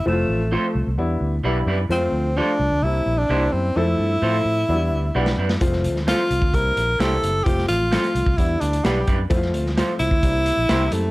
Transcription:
<<
  \new Staff \with { instrumentName = "Clean electric guitar" } { \time 4/4 \key f \lydian \tempo 4 = 130 r4 <c' f' a' c''>8 r4. <g d' e' b'>8 <g d' e' b'>8 | r4 <c' f' a' c''>8 r4. <bes e' g' c''>8 r8 | r4 <c' f' a' c''>8 r4. <g d' e' b'>8 <g d' e' b'>8 | r4 <c' f' a' c''>8 r4. <bes e' g' c''>8 r8 |
r4 <c' f' a' c''>8 r4. <g d' e' b'>8 <g d' e' b'>8 | r4 <c' f' a' c''>8 r4. <bes e' g' c''>8 r8 | }
  \new Staff \with { instrumentName = "Tenor saxophone" } { \time 4/4 \key f \lydian a2 r2 | c'4 d'4 e'8. d'8. c'8 | e'2.~ e'8 r8 | r4 f'4 bes'4 a'4 |
g'8 f'4. e'8 d'8 g'8. r16 | r4. e'2 a8 | }
  \new Staff \with { instrumentName = "Upright piano" } { \time 4/4 \key f \lydian <f a c' e' f'>8. r16 <f a c' f'>8. r16 <g b d' e'>8. r16 <g b d' e'>8. r16 | <f gis a c' f'>8. r16 <f g a c' f'>8. r16 <g bes c' e'>8. r16 <g bes c' dis' e'>8. r16 | <f gis a c' a'>8. r16 <f a c' e' a'>8. r16 <fis g b d' e'>8. r16 <g b d' fis' g'>8. r16 | <f gis a c' f'>8. r16 <f a c' f'>8. r16 <g bes c' e'>8. r16 <g bes c' d' e'>8. r16 |
<f a c' f'>8. r16 <f a c' f'>8. r16 <g b d' e'>8. r16 <g b d' g'>8. r16 | <f a c' e' f'>8. r16 <f a c' f'>8. r16 <g bes c' d' e'>8. r16 <g bes c' e'>8. r16 | }
  \new Staff \with { instrumentName = "Fingered electric bass" } { \clef bass \time 4/4 \key f \lydian f,,8 a,,8. r16 c,16 c,16 e,8 d,8 b,,8 fis,8 | f,8 d,8. r16 c,16 d,16 c,8 bes,,8 c,8 fis,8 | f,8 g,8 a,8 a,8 e,8 d,8 b,,8 fis,8 | f,,8 d,8. r16 c,16 d,16 c,8 bes,,8 c,8 fis,,8 |
f,,8 a,,8. r16 c,16 c,16 e,8 d,8 b,,8 fis,8 | f,8 d,8. r16 c,16 d,16 c,8. bes,,16 c,8 fis,8 | }
  \new DrumStaff \with { instrumentName = "Drums" } \drummode { \time 4/4 r4 r4 r4 r4 | r4 r4 r4 r4 | r4 r4 r4 r16 sn8 sn16 | <hh bd>16 sn16 hh16 sn16 <hh sn>8 hh16 bd16 <hh bd>8 hh8 <hh sn>8 hh8 |
<hh bd>16 sn16 hh8 <hh sn>16 hh16 hh16 bd16 <hh bd>8 hh16 hh16 <hh sn>8 <hh bd>8 | <hh bd>16 sn16 hh16 sn16 <hh sn>8 hh16 bd16 <hh bd>8 hh8 <hh sn>8 hh8 | }
>>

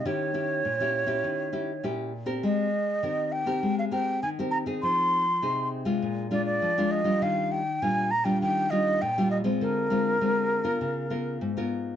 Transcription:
<<
  \new Staff \with { instrumentName = "Flute" } { \time 4/4 \key ees \major \tempo 4 = 100 des''2. r4 | ees''4. g''8. f''16 g''8 aes''8 bes''8 | c'''4. r4 d''16 d''8. ees''8 | f''8 g''8 aes''8 bes''16 g''16 g''8 ees''8 g''8 ees''8 |
bes'2. r4 | }
  \new Staff \with { instrumentName = "Nylon-string guitar" } { \time 4/4 \key ees \major << { <des' fes' g'>8 <des' fes' g'>8 r16 <des' fes' g'>8 <des' fes' g'>8. <des' fes' g'>16 r16 <des' fes' g'>8 r16 <c' g' bes'>16~ | <c' g' bes'>8 r8 <c' g' bes'>8. <c' g' bes'>8. <c' g' bes'>8 r16 <c' g' bes'>8 <c' ees' aes'>16~ | <c' ees' aes'>8. r16 <c' ees' aes'>8. <aes d' f'>8. <aes d' f'>8. <aes d' f'>8 <g d' f'>16~ | <g d' f'>8. r16 <g d' f'>8 r16 <g d' f'>8. <g d' f'>8 r16 <g d' f'>8 <aes c' f'>16~ |
<aes c' f'>8 <aes c' f'>8 <aes c' f'>8. <ces' f' bes'>8. <ces' f' bes'>8. <ces' f' bes'>8. | } \\ { ees4 bes,4 ees4 bes,4 | aes4 ees4 aes4 ees4 | f4 c4 bes,4 f4 | ees4 bes,4 ees4 bes,4 |
d4 d4 des4 aes,4 | } >> }
>>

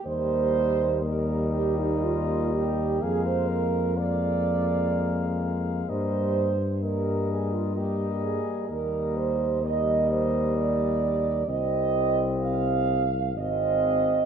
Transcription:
<<
  \new Staff \with { instrumentName = "Flugelhorn" } { \time 3/4 \key ees \major \tempo 4 = 63 ees''4 ees''2 | f''4 f''2 | ees''8 r8 ees''4 ees''4 | ees''4 ees''2 |
ees''4. r8 f''4 | }
  \new Staff \with { instrumentName = "French horn section" } { \time 3/4 \key ees \major c''4 bes'8 g'16 ees'16 f'8 g'8 | aes'16 c''16 bes'8 d''4. r8 | c''4 bes'8 aes'16 f'16 g'8 aes'8 | bes'8 c''8 ees''8 c''8 d''4 |
ees''4 f''4 ees''4 | }
  \new Staff \with { instrumentName = "Euphonium" } { \time 3/4 \key ees \major bes4 bes2 | bes4 bes2 | bes8 r8 bes4 bes4 | bes4 bes2 |
c'4. r8 c'4 | }
  \new Staff \with { instrumentName = "Trombone" } { \clef bass \time 3/4 \key ees \major g4 g2 | aes4 aes2 | g8 r8 g4 g4 | g4 g2 |
g4. r8 aes4 | }
  \new Staff \with { instrumentName = "Tuba" } { \clef bass \time 3/4 \key ees \major ees,2. | f,2. | g,2~ g,8 r8 | ees,2. |
c,2 aes,,4 | }
>>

